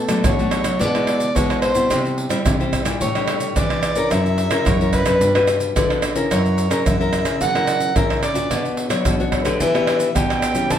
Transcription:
Already playing: nylon-string guitar B2, soprano saxophone A4
0.09 nylon-string guitar F#3 A3 D4 F#4, pandeiro, tamborim, maracas
0.24 nylon-string guitar B2 F#3, soprano saxophone C#5, pandeiro, tamborim, maracas, surdo
0.39 nylon-string guitar A3 D4 F#4, pandeiro, maracas
0.51 pandeiro, tamborim, maracas
0.64 nylon-string guitar F#3, pandeiro, tamborim, maracas
0.79 nylon-string guitar B2 G#3 B3 E4, soprano saxophone D5, pandeiro, maracas, surdo
0.94 nylon-string guitar G#3 B3 E4, pandeiro, tamborim, maracas
1.07 pandeiro, tamborim
1.20 pandeiro, maracas
1.35 nylon-string guitar B2 G#3 B3 E4, soprano saxophone C#5, pandeiro, tamborim, maracas, surdo
1.50 pandeiro, tamborim, maracas
1.62 soprano saxophone C5, pandeiro, tamborim
1.74 nylon-string guitar B2 G3 C4 E4, pandeiro, maracas
1.90 nylon-string guitar C3, pandeiro, tamborim, maracas, surdo
2.05 pandeiro, maracas
2.18 pandeiro
2.29 nylon-string guitar G3 C4 E4, pandeiro, tamborim, maracas
2.46 nylon-string guitar C3 G3, pandeiro, tamborim, maracas, surdo
2.60 nylon-string guitar G3 C4 E4, pandeiro, maracas
2.73 pandeiro, tamborim, maracas, surdo
2.85 nylon-string guitar A#2 G3 D4 E4, pandeiro, tamborim, maracas
3.01 nylon-string guitar A2, soprano saxophone C#5, pandeiro, maracas, surdo
3.15 nylon-string guitar G3 D4 E4, pandeiro, tamborim, maracas
3.28 pandeiro, tamborim
3.40 pandeiro, maracas
3.56 nylon-string guitar E3 G3 D4 E4, soprano saxophone D5, pandeiro, tamborim, maracas, surdo
3.70 pandeiro, tamborim, maracas
3.83 pandeiro, tamborim, maracas
3.95 nylon-string guitar C#3 C#4 E4 A#4, pandeiro, maracas
4.10 nylon-string guitar F#2 F#3, soprano saxophone E5, pandeiro, tamborim, maracas, surdo
4.26 pandeiro, maracas
4.38 pandeiro
4.50 nylon-string guitar C#3 C#4 E4 A#4, pandeiro, tamborim, maracas
4.65 nylon-string guitar F#2 C#3, soprano saxophone C#5, pandeiro, tamborim, maracas, surdo
4.81 nylon-string guitar C#4 E4 A#4, pandeiro, maracas
4.93 soprano saxophone B4, pandeiro, tamborim, maracas, surdo
5.05 nylon-string guitar F#2 D4 F#4 B4, pandeiro, tamborim, maracas
5.21 nylon-string guitar G2 G3, pandeiro, maracas, surdo
5.35 nylon-string guitar D4 F#4 B4, pandeiro, tamborim, maracas
5.47 pandeiro, tamborim, maracas
5.60 pandeiro, maracas
5.76 nylon-string guitar D3 D4 F#4 B4, pandeiro, tamborim, maracas, surdo
5.90 pandeiro, tamborim, maracas
6.02 pandeiro, tamborim, maracas
6.15 nylon-string guitar C#3 C#4 E4 A#4, pandeiro, maracas
6.31 nylon-string guitar F#2 F#3, soprano saxophone C#5, pandeiro, tamborim, maracas, surdo
6.46 pandeiro, maracas
6.58 pandeiro, maracas
6.70 nylon-string guitar C#3 C#4 E4 A#4, pandeiro, tamborim, maracas
6.85 nylon-string guitar F#2 C#3, soprano saxophone E5, pandeiro, tamborim, maracas, surdo
7.00 nylon-string guitar C#4 E4 A#4, pandeiro, maracas
7.13 pandeiro, tamborim, maracas
7.25 nylon-string guitar C#3, pandeiro, tamborim, maracas
7.41 nylon-string guitar C#3 F#3, soprano saxophone F#5, pandeiro, maracas, surdo
7.55 nylon-string guitar C#4 E4 A#4, pandeiro, tamborim, maracas
7.67 pandeiro, tamborim, maracas
7.80 pandeiro, maracas
7.95 nylon-string guitar C#3 C#4 E4 A#4, soprano saxophone E5, pandeiro, tamborim, maracas, surdo
8.10 pandeiro, tamborim, maracas
8.23 soprano saxophone D5, pandeiro, tamborim, maracas
8.34 nylon-string guitar A#2 D4 F#4, pandeiro, maracas
8.50 nylon-string guitar B2 B3, pandeiro, tamborim, maracas, surdo
8.65 pandeiro, maracas
8.77 pandeiro
8.89 nylon-string guitar F#3 D4 F#4 C#5, pandeiro, tamborim, maracas
9.05 nylon-string guitar B2 F#3, pandeiro, tamborim, maracas, surdo
9.20 nylon-string guitar D4 F#4 C#5, pandeiro, maracas
9.32 pandeiro, tamborim, surdo
9.45 nylon-string guitar D3 B3 D4 G4, pandeiro, tamborim, maracas
9.60 nylon-string guitar E3, soprano saxophone E5, pandeiro, maracas, surdo
9.74 nylon-string guitar B3 D4 G4, pandeiro, tamborim, maracas
9.87 pandeiro, tamborim
10.00 pandeiro, maracas
10.15 nylon-string guitar B2 B3 D4 G4, soprano saxophone G5, pandeiro, tamborim, maracas, surdo
10.30 pandeiro, tamborim, maracas
10.42 pandeiro, tamborim, maracas
10.54 nylon-string guitar E3 G3 C#4 G4, pandeiro, maracas
10.70 nylon-string guitar E3, soprano saxophone A5, pandeiro, tamborim, maracas, surdo

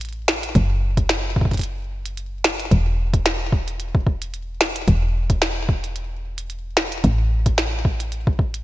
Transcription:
Already playing: fm bass A1
0.01 closed hi-hat
0.05 closed hi-hat
0.09 closed hi-hat
0.13 closed hi-hat
0.28 snare
0.43 closed hi-hat
0.55 fm bass F#1, kick, closed hi-hat
0.97 kick, closed hi-hat
1.09 snare, closed hi-hat
1.36 kick
1.41 kick
1.45 kick
1.51 kick, closed hi-hat
1.54 kick, closed hi-hat
1.57 kick, closed hi-hat
1.59 closed hi-hat
1.61 closed hi-hat
1.64 closed hi-hat
2.06 closed hi-hat
2.17 closed hi-hat
2.44 snare
2.60 closed hi-hat
2.71 fm bass E1, kick, closed hi-hat
3.14 kick, closed hi-hat
3.26 snare, closed hi-hat
3.52 kick
3.68 closed hi-hat
3.80 closed hi-hat
3.95 kick
4.07 kick
4.22 closed hi-hat
4.34 closed hi-hat
4.61 snare
4.76 closed hi-hat
4.88 fm bass E1, kick, closed hi-hat
5.30 kick, closed hi-hat
5.42 snare
5.69 kick
5.84 closed hi-hat
5.96 closed hi-hat
6.38 closed hi-hat
6.50 closed hi-hat
6.77 snare
6.92 closed hi-hat
7.04 fm bass A1, kick, closed hi-hat
7.46 kick, closed hi-hat
7.58 snare, closed hi-hat
7.85 kick
8.00 closed hi-hat
8.12 closed hi-hat
8.27 kick
8.39 kick
8.54 closed hi-hat

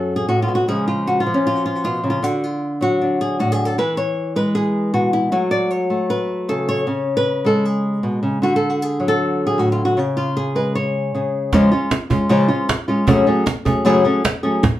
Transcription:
Already playing: nylon-string guitar F#2 F#3 A3 C#4 A4
0.16 nylon-string guitar G#4
0.29 nylon-string guitar A2 F#4
0.42 nylon-string guitar F4
0.48 nylon-string guitar B2
0.55 nylon-string guitar F#4
0.68 nylon-string guitar C#3 F3 G#3 G#4
0.88 nylon-string guitar F4
1.07 nylon-string guitar F#4
1.20 nylon-string guitar F4
1.27 nylon-string guitar F3
1.34 nylon-string guitar C#4
1.47 nylon-string guitar F4
1.56 nylon-string guitar F#4
1.66 nylon-string guitar F4
1.75 nylon-string guitar F#4
1.84 nylon-string guitar B2 F4
2.04 nylon-string guitar C#3
2.10 nylon-string guitar F4
2.23 nylon-string guitar D3 F#4
2.44 nylon-string guitar F4
2.81 nylon-string guitar F#3 F#4
3.01 nylon-string guitar D4
3.21 nylon-string guitar G#4
3.39 nylon-string guitar A2 F#4
3.52 nylon-string guitar G#4
3.65 nylon-string guitar A4
3.78 nylon-string guitar E3 B4
3.97 nylon-string guitar C#5
4.36 nylon-string guitar G#3 B4
4.55 nylon-string guitar G#4
4.94 nylon-string guitar B2 F#4
5.13 nylon-string guitar E4
5.32 nylon-string guitar F#3 A3 F#4
5.51 nylon-string guitar D5
5.71 nylon-string guitar C#5
5.90 nylon-string guitar A3
6.10 nylon-string guitar B4
6.49 nylon-string guitar C#3 A4
6.69 nylon-string guitar C#5
6.87 nylon-string guitar C#3
7.17 nylon-string guitar B4
7.45 nylon-string guitar G#3 A4
7.65 nylon-string guitar G#4
8.03 nylon-string guitar B2
8.23 nylon-string guitar C#3
8.42 nylon-string guitar D3 F#4
8.56 nylon-string guitar A4
8.70 nylon-string guitar F#4
8.82 nylon-string guitar G#4
9.00 nylon-string guitar F#3
9.08 nylon-string guitar A4
9.47 nylon-string guitar G#4
9.58 nylon-string guitar A2 F#4
9.72 nylon-string guitar F4
9.85 nylon-string guitar F#4
9.97 nylon-string guitar C#3 G#4
10.17 nylon-string guitar F4
10.37 nylon-string guitar G#4
10.55 nylon-string guitar G#3 B4
10.75 nylon-string guitar C#5
11.15 nylon-string guitar C#3 G#4
11.52 nylon-string guitar C#3 F3 G#3 C#4 F4, cajon bass, cajon slap
11.71 nylon-string guitar G#3 C#4 F4
11.91 muted nylon-string guitar stroke, cajon slap
12.10 nylon-string guitar G#3 C#4 F4, cajon bass
12.29 nylon-string guitar C#3 F3 G#3 C#4 F4
12.48 nylon-string guitar G#3 C#4 F4
12.69 muted nylon-string guitar stroke, cajon slap
12.88 nylon-string guitar G#3 C#4 F4
13.07 nylon-string guitar F#2 C#3 F#3 A3 C#4 G#4, cajon bass
13.27 nylon-string guitar F#3 A3 C#4 G#4
13.46 muted nylon-string guitar stroke, cajon slap
13.65 nylon-string guitar F#3 A3 C#4 G#4, cajon bass
13.85 nylon-string guitar F#2 C#3 F#3 A3 C#4 G#4, cajon slap
14.05 nylon-string guitar F#3 A3 C#4 G#4
14.24 muted nylon-string guitar stroke, cajon slap
14.43 nylon-string guitar F#3 A3 C#4 G#4, cajon slap
14.63 muted nylon-string guitar stroke, cajon bass, cajon slap

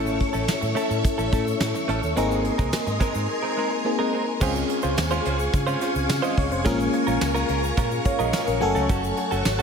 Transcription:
Already playing: fingered electric bass A1, clean electric guitar A3 C#4 E4 A4, fm electric piano A3 C#4 E4 A4, string machine A4 C#5 E5 C#6
0.06 shaker
0.19 muted clean electric guitar stroke, kick, closed hi-hat
0.33 fingered electric bass A1, clean electric guitar A3 C#4 E4 A4, shaker
0.47 muted clean electric guitar stroke, snare, closed hi-hat, shaker
0.61 fingered electric bass A2, muted clean electric guitar stroke, shaker
0.75 clean electric guitar A3 C#4 E4 A4, closed hi-hat, shaker
0.89 fingered electric bass A2, clean electric guitar A3 C#4 E4 A4, shaker
1.03 muted clean electric guitar stroke, kick, closed hi-hat, shaker
1.18 fingered electric bass A1, clean electric guitar A3 C#4 E4 A4, shaker
1.32 fingered electric bass A2, clean electric guitar A3 C#4 E4 A4, fm electric piano A3 C#4 E4 A4, kick, closed hi-hat, shaker
1.46 muted clean electric guitar stroke, shaker
1.60 fingered electric bass A2, muted clean electric guitar stroke, snare, closed hi-hat, shaker
1.75 muted clean electric guitar stroke, shaker
1.88 fingered electric bass A1, clean electric guitar A3 C#4 E4 A4, closed hi-hat
2.02 fingered electric bass D#2, muted clean electric guitar stroke, shaker
2.16 fingered electric bass G#1, clean electric guitar G#3 C4 D#4 A#4, fm electric piano A#3 C4 D#4 G#4, string machine A#4 D#5 G#5 C6, closed hi-hat, shaker
2.31 shaker
2.44 muted clean electric guitar stroke, closed hi-hat
2.58 fingered electric bass C2, clean electric guitar G#3 C4 D#4 A#4, kick, shaker
2.72 muted clean electric guitar stroke, muted fingered electric bass stroke, snare, closed hi-hat, tambourine, shaker
2.87 fingered electric bass G#2, muted clean electric guitar stroke, shaker
3.00 clean electric guitar G#3 C4 D#4 A#4, kick, closed hi-hat, shaker
3.15 fingered electric bass G#2, clean electric guitar G#3 C4 D#4 A#4, shaker
3.29 muted clean electric guitar stroke
3.42 clean electric guitar G#3 C4 D#4 A#4
3.57 clean electric guitar G#3 C4 D#4 A#4
3.71 muted clean electric guitar stroke
3.85 fm electric piano A#3 C4 D#4 G#4, muted clean electric guitar stroke
3.99 clean electric guitar G#3 C4 D#4 A#4
4.13 clean electric guitar G#3 C4 D#4 A#4
4.27 muted clean electric guitar stroke
4.40 fingered electric bass C#2, fm electric piano G#3 C4 C#4 F4 G#4, clean electric guitar G#3 C#4 F4 C5, string machine G#4 F5 G#5 C#6, kick, crash, shaker
4.55 muted clean electric guitar stroke, shaker
4.69 muted clean electric guitar stroke, closed hi-hat
4.82 fingered electric bass C#2, clean electric guitar G#3 C#4 F4 C5, shaker
4.97 fingered electric bass D#2, muted clean electric guitar stroke, snare, closed hi-hat, tambourine, shaker
5.11 clean electric guitar G#3 C#4 F4 C5, shaker
5.25 fingered electric bass C#2, clean electric guitar G#3 C#4 F4 C5, closed hi-hat
5.39 muted clean electric guitar stroke, shaker
5.53 fingered electric bass C#3, muted clean electric guitar stroke, kick, closed hi-hat, shaker
5.67 clean electric guitar G#3 C#4 F4 C5, shaker
5.80 clean electric guitar G#3 C#4 F4 C5, closed hi-hat, shaker
5.95 fingered electric bass C#2, muted clean electric guitar stroke, shaker
6.09 fingered electric bass C#3, fm electric piano F5, muted clean electric guitar stroke, snare, closed hi-hat, tambourine, shaker
6.22 clean electric guitar G#3 C#4 F4 C5, fm electric piano D#5, shaker
6.37 fingered electric bass C#2, fm electric piano C#5, muted clean electric guitar stroke, kick, open hi-hat
6.51 fingered electric bass F1, fm electric piano C5, muted clean electric guitar stroke, shaker
6.64 fingered electric bass A#1, fm electric piano G#3 A#3 C#4 F4 G#4, clean electric guitar G#3 C#4 F4 A#4, string machine A#4, kick, closed hi-hat, shaker
6.79 muted clean electric guitar stroke, shaker
6.93 muted clean electric guitar stroke, closed hi-hat
7.07 fingered electric bass A#1, clean electric guitar G#3 C#4 F4 A#4, shaker
7.21 fingered electric bass C#2, muted clean electric guitar stroke, snare, closed hi-hat, tambourine, shaker
7.34 clean electric guitar G#3 C#4 F4 A#4, shaker
7.49 fingered electric bass C#2, clean electric guitar G#3 C#4 F4 A#4, closed hi-hat
7.63 muted clean electric guitar stroke, shaker
7.77 fingered electric bass A#2, clean electric guitar G#3 C#4 F4 A#4, kick, closed hi-hat, shaker
7.91 muted clean electric guitar stroke, shaker
8.05 fm electric piano C#5 F5, muted clean electric guitar stroke, kick, closed hi-hat, shaker
8.19 fingered electric bass A#1, clean electric guitar G#3 C#4 F4 A#4, fm electric piano D#5, shaker
8.33 clean electric guitar G#3 C#4 F4 A#4, fm electric piano C#5 F5, snare, closed hi-hat, tambourine, shaker
8.47 fingered electric bass A#1, fm electric piano A#4, muted clean electric guitar stroke, shaker
8.60 fingered electric bass F#1, fm electric piano F#3 A3 C#4 F#4 A4 G#5, string machine A4 C#5 F#5, muted clean electric guitar stroke, open hi-hat
8.75 fingered electric bass C#2, clean electric guitar A3 C#4 F#4 A4, shaker
8.89 fingered electric bass F#1, clean electric guitar A3 C#4 F#4 A4, kick, closed hi-hat, shaker
9.03 muted clean electric guitar stroke, shaker
9.17 muted clean electric guitar stroke, closed hi-hat
9.31 fingered electric bass F#1, clean electric guitar A3 C#4 F#4 A4, shaker
9.45 fingered electric bass G#1, snare, closed hi-hat, tambourine, shaker
9.59 clean electric guitar A4

